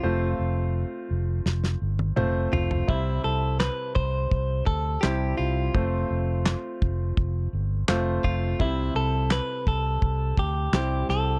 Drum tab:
CP |----------------|----x-------x---|----x-------x---|----x-------x---|
SD |--------oo------|----o-------o---|----o-------o---|----o-------o-o-|
T1 |-----------o----|----------------|----------------|----------------|
T2 |------------o---|----------------|----------------|----------------|
FT |--------------oo|----------------|----------------|----------------|
BD |----------------|o-----o-o-o-----|o-----o-o-----o-|o-----o-o-o-----|